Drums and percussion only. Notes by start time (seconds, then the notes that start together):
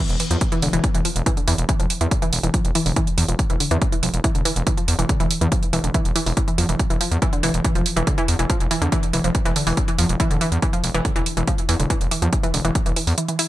0.09 closed hi-hat
0.20 open hi-hat
0.31 closed hi-hat
0.41 kick, closed hi-hat
0.52 closed hi-hat
0.62 open hi-hat
0.73 closed hi-hat
0.84 kick, closed hi-hat
0.95 closed hi-hat
1.05 open hi-hat
1.16 closed hi-hat
1.26 kick, closed hi-hat
1.37 closed hi-hat
1.48 open hi-hat
1.58 closed hi-hat
1.69 kick, closed hi-hat
1.80 closed hi-hat
1.90 open hi-hat
2.01 closed hi-hat
2.11 kick, closed hi-hat
2.22 closed hi-hat
2.33 open hi-hat
2.43 closed hi-hat
2.54 kick, closed hi-hat
2.65 closed hi-hat
2.75 open hi-hat
2.86 open hi-hat
2.96 kick, closed hi-hat
3.07 closed hi-hat
3.18 open hi-hat
3.28 closed hi-hat
3.39 kick, closed hi-hat
3.50 closed hi-hat
3.60 open hi-hat
3.71 closed hi-hat
3.82 kick, closed hi-hat
3.92 closed hi-hat
4.03 open hi-hat
4.14 closed hi-hat
4.24 kick, closed hi-hat
4.35 closed hi-hat
4.45 open hi-hat
4.56 closed hi-hat
4.67 kick, closed hi-hat
4.78 closed hi-hat
4.88 open hi-hat
4.99 closed hi-hat
5.09 kick, closed hi-hat
5.20 closed hi-hat
5.31 open hi-hat
5.41 closed hi-hat
5.52 kick, closed hi-hat
5.63 closed hi-hat
5.73 open hi-hat
5.84 closed hi-hat
5.94 kick, closed hi-hat
6.05 closed hi-hat
6.16 open hi-hat
6.26 open hi-hat
6.37 kick, closed hi-hat
6.48 closed hi-hat
6.58 open hi-hat
6.69 closed hi-hat
6.79 kick, closed hi-hat
6.90 closed hi-hat
7.01 open hi-hat
7.12 closed hi-hat
7.22 kick, closed hi-hat
7.33 closed hi-hat
7.43 open hi-hat
7.54 closed hi-hat
7.65 kick, closed hi-hat
7.75 closed hi-hat
7.86 open hi-hat
7.97 closed hi-hat
8.07 kick, closed hi-hat
8.18 closed hi-hat
8.28 open hi-hat
8.39 closed hi-hat
8.50 kick, closed hi-hat
8.60 closed hi-hat
8.71 open hi-hat
8.82 closed hi-hat
8.92 kick, closed hi-hat
9.03 closed hi-hat
9.13 open hi-hat
9.24 closed hi-hat
9.35 kick, closed hi-hat
9.46 closed hi-hat
9.56 open hi-hat
9.67 open hi-hat
9.77 kick, closed hi-hat
9.88 closed hi-hat
9.99 open hi-hat
10.09 closed hi-hat
10.20 kick, closed hi-hat
10.31 closed hi-hat
10.41 open hi-hat
10.52 closed hi-hat
10.62 kick, closed hi-hat
10.73 closed hi-hat
10.84 open hi-hat
10.95 closed hi-hat
11.05 kick, closed hi-hat
11.16 closed hi-hat
11.26 open hi-hat
11.37 closed hi-hat
11.47 kick, closed hi-hat
11.58 closed hi-hat
11.69 open hi-hat
11.80 closed hi-hat
11.90 kick, closed hi-hat
12.01 closed hi-hat
12.11 open hi-hat
12.22 closed hi-hat
12.33 kick, closed hi-hat
12.43 closed hi-hat
12.54 open hi-hat
12.65 closed hi-hat
12.75 kick, closed hi-hat
12.86 closed hi-hat
12.96 open hi-hat
13.07 open hi-hat
13.18 closed hi-hat
13.29 closed hi-hat
13.39 open hi-hat